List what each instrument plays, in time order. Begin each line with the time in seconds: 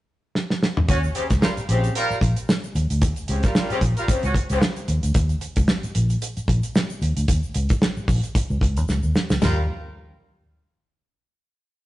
0.35 snare
0.50 snare
0.63 snare
0.77 mid tom
0.88 fingered electric bass D#2, horn section C#4 F#4, kick, closed hi-hat, shaker
1.03 shaker
1.15 horn section C#3 C4 G4, closed hi-hat, shaker
1.30 fingered electric bass C#2, kick, snare, closed hi-hat, shaker
1.41 horn section G3 F4 A#4, snare, shaker
1.57 muted fingered electric bass stroke, closed hi-hat, shaker
1.69 fingered electric bass A#1, horn section C#3 C4 G4, closed hi-hat, shaker
1.84 closed hi-hat, shaker
1.95 horn section G3 F4 A#4, closed hi-hat, shaker
2.10 muted fingered electric bass stroke, shaker
2.21 fingered electric bass A#1, kick, closed hi-hat
2.36 closed hi-hat, shaker
2.49 snare, shaker
2.64 shaker
2.75 fingered electric bass D#2, closed hi-hat, shaker
2.90 fingered electric bass D2, closed hi-hat, shaker
3.02 fingered electric bass D#2, kick, closed hi-hat, shaker
3.16 closed hi-hat, shaker
3.28 fingered electric bass C#2, horn section C#3 C4 G4, closed hi-hat, shaker
3.43 horn section G3 F4 A#4, kick, snare, closed hi-hat, shaker
3.55 horn section G3 F4 A#4, snare, shaker
3.70 horn section C#3 C4 G4, muted fingered electric bass stroke, closed hi-hat, shaker
3.81 fingered electric bass A#1, kick, closed hi-hat, shaker
3.97 horn section G3 F4 A#4, closed hi-hat, shaker
4.08 horn section C#3 C4 G4, kick, closed hi-hat, shaker
4.23 fingered electric bass C#2, horn section C#4 F#4, closed hi-hat, shaker
4.34 kick, closed hi-hat
4.49 fingered electric bass C#2, horn section C#3 C4 G4, closed hi-hat, shaker
4.62 snare, shaker
4.76 closed hi-hat, shaker
4.88 fingered electric bass D#2, closed hi-hat, shaker
5.03 fingered electric bass D2, closed hi-hat, shaker
5.14 fingered electric bass D#2, kick, closed hi-hat, shaker
5.29 closed hi-hat, shaker
5.41 closed hi-hat, shaker
5.56 fingered electric bass C#2, kick, closed hi-hat, shaker
5.68 snare, shaker
5.83 muted fingered electric bass stroke, closed hi-hat, shaker
5.95 fingered electric bass A#1, closed hi-hat, shaker
6.09 closed hi-hat, shaker
6.22 closed hi-hat, shaker
6.37 muted fingered electric bass stroke, closed hi-hat, shaker
6.48 fingered electric bass A#1, kick, closed hi-hat
6.63 closed hi-hat, shaker
6.75 snare, shaker
6.89 shaker
7.01 fingered electric bass D#2, closed hi-hat, shaker
7.17 fingered electric bass D2, closed hi-hat, shaker
7.28 fingered electric bass D#2, kick, closed hi-hat, shaker
7.43 shaker
7.54 fingered electric bass C#2, closed hi-hat, shaker
7.69 kick, closed hi-hat, shaker
7.82 snare, shaker
7.97 muted fingered electric bass stroke, shaker
8.08 fingered electric bass A#1, kick, open hi-hat, shaker
8.23 closed hi-hat, shaker
8.35 kick, closed hi-hat, shaker
8.50 fingered electric bass C#2, shaker
8.61 fingered electric bass C#2, kick, closed hi-hat
8.77 fingered electric bass D#2, closed hi-hat, shaker
8.88 fingered electric bass C#2, snare, shaker
9.03 fingered electric bass D#2, shaker
9.14 snare, shaker
9.30 fingered electric bass C#2, snare, shaker
9.42 fingered electric bass D#2, horn section G3 F4 A#4, snare, floor tom, splash, shaker